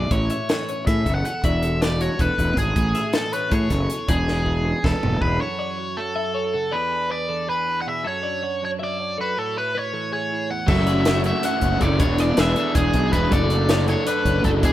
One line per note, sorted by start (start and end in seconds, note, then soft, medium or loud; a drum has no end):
0.00 0.13 F#3 medium
0.00 0.11 E4 medium
0.00 0.10 F#4 medium
0.00 0.12 G#4 medium
0.00 0.12 D5 medium
0.10 0.27 A1 medium
0.10 1.06 A2 medium
0.10 0.21 E4 medium
0.10 0.87 C#5 medium
0.10 kick loud
0.10 closed hi-hat medium
0.21 1.44 F#4 medium
0.30 0.49 E5 medium
0.30 closed hi-hat medium
0.49 1.81 E3 medium
0.49 0.87 E4 medium
0.49 0.68 A4 medium
0.49 snare loud
0.49 closed hi-hat medium
0.68 1.05 C#4 medium
0.68 0.88 C#5 medium
0.68 closed hi-hat medium
0.87 1.03 A2 medium
0.87 1.24 E4 medium
0.87 1.06 G#4 medium
0.87 1.14 E5 loud
0.87 kick loud
0.87 snare soft
0.87 closed hi-hat medium
1.05 1.22 F#1 loud
1.05 1.43 E2 medium
1.05 1.23 C#4 medium
1.05 1.44 A4 medium
1.05 kick medium
1.05 closed hi-hat medium
1.15 1.24 F#5 medium
1.25 1.34 C#4 medium
1.25 1.44 F#5 loud
1.25 closed hi-hat medium
1.34 1.44 E4 medium
1.44 2.08 E1 loud
1.44 2.76 E2 medium
1.44 2.76 F#4 medium
1.44 1.63 D5 medium
1.44 1.82 E5 loud
1.44 kick loud
1.44 closed hi-hat medium
1.63 2.01 A4 medium
1.63 closed hi-hat medium
1.81 3.14 E3 medium
1.81 2.19 D4 medium
1.81 2.01 D5 medium
1.81 snare loud
1.81 closed hi-hat medium
2.01 2.38 A3 medium
2.01 2.20 F#4 medium
2.01 2.20 C#5 medium
2.01 closed hi-hat medium
2.19 2.28 E1 loud
2.19 2.57 D4 medium
2.19 2.57 A4 medium
2.19 2.58 B4 medium
2.19 kick loud
2.19 closed hi-hat medium
2.38 2.55 E1 medium
2.38 2.74 B2 medium
2.38 3.33 A3 medium
2.38 kick medium
2.38 closed hi-hat medium
2.57 2.73 G#1 medium
2.57 2.74 D4 medium
2.57 2.76 G#4 medium
2.57 3.14 G#4 medium
2.57 kick medium
2.57 closed hi-hat medium
2.76 2.92 A1 loud
2.76 3.71 A2 medium
2.76 4.11 F#4 medium
2.76 kick loud
2.76 closed hi-hat medium
2.95 3.14 E5 medium
2.95 snare soft
2.95 closed hi-hat medium
3.13 4.45 E3 medium
3.13 3.24 C#4 medium
3.13 3.33 A4 medium
3.13 3.32 A4 medium
3.13 snare loud
3.13 closed hi-hat medium
3.24 3.51 E4 soft
3.33 3.71 C#4 medium
3.33 3.53 B4 medium
3.33 3.52 C#5 medium
3.33 closed hi-hat medium
3.51 3.68 A2 loud
3.51 3.89 E4 medium
3.51 3.70 G#4 medium
3.51 4.10 C#5 medium
3.51 kick loud
3.51 closed hi-hat medium
3.70 3.87 F#1 loud
3.70 4.07 E2 medium
3.70 3.89 C#4 medium
3.70 4.08 A4 medium
3.70 kick medium
3.70 snare soft
3.70 closed hi-hat medium
3.89 3.98 C#4 medium
3.89 closed hi-hat medium
3.98 4.08 E4 medium
4.08 4.72 E1 loud
4.08 5.40 E2 medium
4.08 4.46 D4 medium
4.08 5.18 G#4 medium
4.08 4.27 D5 medium
4.08 kick loud
4.08 closed hi-hat medium
4.27 4.65 B4 medium
4.27 snare medium
4.46 5.96 E3 medium
4.46 4.84 D4 medium
4.46 kick soft
4.65 5.01 C#4 medium
4.65 4.84 G#4 medium
4.84 4.92 E1 medium
4.84 5.21 D4 medium
4.84 5.21 A4 medium
4.84 5.21 B4 medium
4.84 kick loud
4.84 snare medium
5.02 5.19 E1 loud
5.02 5.38 B2 medium
5.02 5.38 C#4 medium
5.02 floor tom medium
5.21 5.38 E1 medium
5.21 5.39 D4 medium
5.21 5.40 G#4 medium
5.21 5.41 B4 medium
5.21 kick medium
5.40 6.70 F#2 medium
5.40 5.78 F#4 medium
5.40 5.59 A4 medium
5.40 5.99 C#5 loud
5.59 5.97 E4 medium
5.59 5.77 D5 medium
5.77 6.16 F#4 medium
5.77 6.15 C#5 medium
5.97 6.70 F#3 medium
5.97 6.15 E4 medium
5.97 6.75 A4 medium
6.16 6.25 E4 medium
6.16 6.34 E5 medium
6.25 6.53 F#4 medium
6.34 6.45 C#4 medium
6.34 6.54 C#5 medium
6.45 6.73 E4 medium
6.53 6.71 C#3 medium
6.53 6.71 F#4 medium
6.53 6.73 A4 medium
6.71 8.04 E2 medium
6.71 7.10 G#4 medium
6.71 7.11 B4 medium
6.71 7.10 D5 loud
6.92 7.29 D4 medium
7.10 7.48 G#4 medium
7.10 7.28 B4 medium
7.10 7.49 D5 medium
7.29 8.04 E3 medium
7.29 7.67 D4 medium
7.29 7.48 A4 medium
7.48 7.86 G#4 medium
7.48 7.79 B4 medium
7.68 8.03 D4 medium
7.82 7.86 F#5 medium
7.86 8.03 B2 medium
7.86 8.03 G#4 medium
7.86 8.05 E5 loud
8.04 9.18 F#2 medium
8.04 8.43 F#4 medium
8.04 8.23 A4 medium
8.04 8.64 C#5 loud
8.23 8.62 D4 medium
8.23 8.42 D5 medium
8.43 8.81 F#4 medium
8.43 8.79 C#5 medium
8.62 9.60 F#3 medium
8.62 8.98 D4 medium
8.62 8.70 C#5 medium
8.79 9.19 F#4 medium
8.79 8.99 E5 medium
8.84 9.17 D5 loud
8.99 9.35 D4 medium
8.99 9.18 C#5 medium
9.18 9.35 F#2 medium
9.18 9.37 F#4 medium
9.18 9.37 A4 medium
9.18 9.39 B4 loud
9.37 10.68 A2 medium
9.37 9.74 F#4 medium
9.37 9.56 A4 loud
9.37 9.74 C#5 medium
9.57 9.75 E4 medium
9.57 9.77 B4 loud
9.75 9.84 E4 medium
9.75 9.94 B4 medium
9.75 10.12 C#5 loud
9.84 10.12 F#4 medium
9.93 10.69 E3 medium
9.93 10.03 C#4 medium
9.93 10.12 A4 medium
10.03 10.12 E4 medium
10.12 10.21 E4 medium
10.12 10.50 G#4 medium
10.12 10.51 C#5 loud
10.21 10.49 F#4 medium
10.32 10.51 E4 medium
10.50 10.68 E2 medium
10.50 10.59 E4 medium
10.50 10.68 F#5 loud
10.59 10.68 F#4 medium
10.67 11.32 F#1 loud
10.67 11.98 F#2 medium
10.67 11.04 F#3 loud
10.67 11.24 F#3 medium
10.67 11.05 A3 medium
10.67 12.01 A3 medium
10.67 11.06 C#4 loud
10.67 10.89 E4 medium
10.67 11.08 F#4 loud
10.67 10.87 A4 medium
10.67 11.21 E5 loud
10.67 kick loud
10.67 crash medium
10.71 11.06 F#4 medium
10.87 11.07 E4 medium
10.87 11.05 D5 medium
10.87 closed hi-hat medium
11.05 11.43 F#3 medium
11.05 11.26 A3 medium
11.05 11.24 C#4 medium
11.05 11.16 E4 medium
11.05 11.23 F#4 medium
11.05 11.43 C#5 medium
11.05 snare loud
11.05 closed hi-hat loud
11.16 11.43 F#4 medium
11.24 11.98 F#3 medium
11.24 11.81 A3 medium
11.24 11.82 C#4 medium
11.24 11.62 E4 medium
11.24 11.83 F#4 medium
11.24 11.45 E5 loud
11.24 closed hi-hat medium
11.43 11.81 F#4 medium
11.43 11.63 E5 medium
11.43 11.79 F#5 loud
11.43 snare soft
11.43 closed hi-hat loud
11.61 11.78 F#1 medium
11.61 11.80 E4 medium
11.61 11.81 C#5 medium
11.61 kick medium
11.61 closed hi-hat medium
11.80 12.00 F#1 loud
11.80 11.97 C#3 medium
11.80 11.98 F#3 loud
11.80 11.99 A3 loud
11.80 12.00 C#4 loud
11.80 11.89 E4 medium
11.80 12.00 F#4 medium
11.80 12.00 A4 medium
11.80 11.99 D5 medium
11.80 kick medium
11.80 closed hi-hat medium
11.89 11.99 F#4 medium
11.99 12.31 E1 loud
11.99 13.30 E2 medium
11.99 12.35 E3 loud
11.99 12.36 B3 loud
11.99 12.38 D4 loud
11.99 12.36 G#4 medium
11.99 12.38 G#4 loud
11.99 12.20 C#5 medium
11.99 12.36 D5 medium
11.99 kick loud
11.99 closed hi-hat loud
12.18 12.56 D4 medium
12.18 12.39 D5 loud
12.18 snare soft
12.18 closed hi-hat medium
12.36 12.54 E1 medium
12.36 12.74 E3 medium
12.36 12.58 B3 medium
12.36 12.57 D4 medium
12.36 13.11 G#4 medium
12.36 12.54 G#4 medium
12.36 12.56 B4 medium
12.36 12.77 E5 loud
12.36 snare loud
12.36 closed hi-hat loud
12.55 13.31 E3 medium
12.55 13.12 B3 medium
12.55 12.75 D4 medium
12.55 13.14 D4 medium
12.55 13.14 G#4 medium
12.55 12.75 A4 medium
12.55 closed hi-hat medium
12.75 12.91 E1 medium
12.75 12.93 D4 medium
12.75 13.13 G#4 medium
12.75 13.12 G#4 loud
12.75 kick loud
12.75 closed hi-hat loud
12.93 13.10 B1 medium
12.93 13.33 D4 medium
12.93 kick medium
12.93 closed hi-hat medium
13.12 13.28 E1 medium
13.12 13.29 B2 medium
13.12 13.30 E3 medium
13.12 13.30 B3 medium
13.12 13.32 D4 loud
13.12 13.29 G#4 medium
13.12 13.32 G#4 loud
13.12 13.32 B4 loud
13.12 kick medium
13.12 closed hi-hat medium
13.30 13.95 F#1 loud
13.30 14.43 F#2 medium
13.30 13.66 F#3 medium
13.30 13.68 A3 loud
13.30 13.69 D4 loud
13.30 13.41 E4 medium
13.30 13.50 A4 loud
13.30 13.69 A4 loud
13.30 13.84 D5 medium
13.30 kick loud
13.30 closed hi-hat loud
13.41 13.69 F#4 medium
13.50 13.89 D4 medium
13.50 13.69 D5 medium
13.50 closed hi-hat medium
13.67 14.06 F#3 medium
13.67 13.88 A3 medium
13.67 13.87 D4 medium
13.67 14.07 F#4 medium
13.67 13.85 A4 medium
13.67 14.07 C#5 medium
13.67 snare loud
13.67 closed hi-hat loud
13.86 14.61 F#3 medium
13.86 14.43 A3 medium
13.86 14.44 D4 medium
13.86 14.25 D4 medium
13.86 14.45 A4 medium
13.86 14.08 C#5 medium
13.86 closed hi-hat medium
14.07 14.44 F#4 medium
14.07 14.42 B4 medium
14.07 14.25 D5 medium
14.07 closed hi-hat loud
14.25 14.41 F#1 medium
14.25 14.61 D4 medium
14.25 14.44 C#5 medium
14.25 kick medium
14.25 closed hi-hat medium
14.43 14.63 F#1 loud
14.43 14.61 F#2 medium
14.43 14.61 F#3 medium
14.43 14.62 A3 loud
14.43 14.62 D4 loud
14.43 14.61 F#4 medium
14.43 14.63 A4 medium
14.43 14.50 A4 medium
14.43 14.63 A4 medium
14.43 kick medium
14.43 closed hi-hat medium
14.62 14.73 E1 loud
14.62 14.73 E2 medium
14.62 14.73 E3 loud
14.62 14.73 B3 loud
14.62 14.73 D4 medium
14.62 14.73 D4 loud
14.62 14.73 G#4 medium
14.62 14.73 G#4 loud
14.62 14.73 D5 medium
14.62 kick loud
14.62 closed hi-hat loud